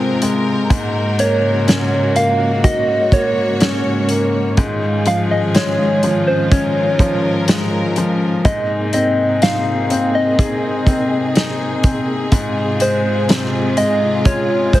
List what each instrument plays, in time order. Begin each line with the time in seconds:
Already playing: upright piano G#2 G#3 C4 F4, string section C3 G#3 F4 A#4, soft synth lead C5
0.22 upright piano G#3, closed hi-hat
0.70 string section G#2 C#3 A#3 F#4, upright piano G#2, kick, closed hi-hat
1.19 upright piano A#3, soft synth lead C#5, closed hi-hat
1.67 upright piano C#4, snare, closed hi-hat
2.15 upright piano A#3, soft synth lead F5, closed hi-hat
2.63 upright piano F#4, string section C#5, soft synth lead D#5, kick, closed hi-hat
3.12 upright piano A#3, soft synth lead C#5, kick, closed hi-hat
3.60 upright piano C#4, snare, closed hi-hat
4.09 upright piano A#3, closed hi-hat
4.57 upright piano G#2, string section D#3 C#4 F4 G#4, kick, closed hi-hat
5.06 upright piano F3, soft synth lead F5, closed hi-hat
5.31 soft synth lead D#5
5.55 upright piano G#3, soft synth lead C#5, snare, closed hi-hat
6.03 upright piano F3, closed hi-hat
6.27 soft synth lead C5
6.52 upright piano C#4, string section A#4, soft synth lead C#5, kick, closed hi-hat
6.99 upright piano F3, kick, closed hi-hat
7.48 upright piano G#3, snare, closed hi-hat
7.96 upright piano F3, closed hi-hat
8.45 upright piano G#2, string section C3 A#3 D#4 G#4, soft synth lead D#5, kick, closed hi-hat
8.93 upright piano C4, soft synth lead D#5, closed hi-hat
9.42 upright piano D#4, soft synth lead F5, snare, closed hi-hat
9.90 upright piano C4, closed hi-hat
10.15 soft synth lead D#5
10.39 upright piano G#4, kick, closed hi-hat
10.87 upright piano C4, kick, closed hi-hat
11.36 upright piano D#4, snare, closed hi-hat
11.84 upright piano C4, kick, closed hi-hat
12.32 upright piano G#2, string section G#3 F4, kick, closed hi-hat
12.80 upright piano G#3, soft synth lead C5, closed hi-hat
13.29 upright piano C3, snare, closed hi-hat
13.77 upright piano G#3, soft synth lead D#5, closed hi-hat
14.25 upright piano F4, soft synth lead C#5, kick, closed hi-hat
14.73 upright piano G#3, soft synth lead C5, kick, closed hi-hat